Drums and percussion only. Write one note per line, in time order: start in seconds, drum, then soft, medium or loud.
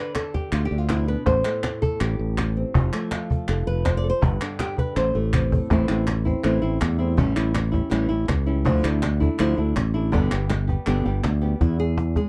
0.15 cajon slap medium
0.15 clap medium
0.35 cajon bass medium
0.35 cajon slap soft
0.52 clap medium
0.89 cajon slap medium
0.89 clap medium
1.27 cajon bass loud
1.27 cajon slap soft
1.45 clap medium
1.63 cajon slap medium
1.63 clap medium
1.83 cajon bass medium
2.00 clap medium
2.38 cajon slap loud
2.38 clap medium
2.57 cajon slap soft
2.75 cajon bass medium
2.93 clap medium
3.12 cajon slap medium
3.12 clap medium
3.31 cajon bass medium
3.48 clap medium
3.86 cajon bass medium
3.86 cajon slap loud
3.86 clap medium
4.04 cajon slap soft
4.23 cajon bass loud
4.41 clap medium
4.59 cajon slap medium
4.59 clap medium
4.78 cajon bass medium
4.97 cajon slap medium
4.97 clap medium
5.33 cajon bass medium
5.33 clap medium
5.52 cajon bass medium
5.71 cajon bass loud
5.71 cajon slap soft
5.89 clap medium
6.07 cajon slap medium
6.07 clap medium
6.26 cajon bass medium
6.26 cajon slap soft
6.44 clap medium
6.81 cajon bass medium
6.81 cajon slap medium
6.81 clap medium
7.01 cajon slap soft
7.18 cajon bass loud
7.36 clap medium
7.55 cajon slap medium
7.55 clap medium
7.74 cajon bass medium
7.74 cajon slap soft
7.92 clap medium
8.29 cajon bass medium
8.29 cajon slap loud
8.29 clap medium
8.66 cajon bass medium
8.84 clap medium
9.03 cajon slap medium
9.03 clap medium
9.22 cajon bass medium
9.22 cajon slap soft
9.39 clap medium
9.76 cajon slap loud
9.76 clap medium
9.95 cajon slap soft
10.14 cajon bass loud
10.14 cajon slap soft
10.31 clap medium
10.50 cajon slap medium
10.50 clap medium
10.69 cajon bass medium
10.69 cajon slap soft
10.86 clap medium
11.24 cajon slap loud
11.24 clap medium
11.43 cajon slap soft
11.61 cajon bass loud
11.61 cajon slap soft
11.98 cajon slap medium
12.16 cajon bass medium
12.16 cajon slap soft